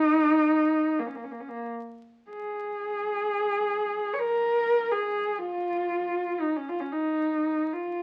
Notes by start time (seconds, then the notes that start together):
Already playing: D#4
0.99 A#3
1.07 C#4
1.16 A#3
1.24 C#4
1.32 A#3
1.40 C#4
1.49 A#3
2.30 G#4
4.14 C#5
4.20 A#4
4.92 G#4
5.38 F4
6.40 D#4
6.57 C#4
6.69 F4
6.80 C#4
6.92 D#4
7.74 F4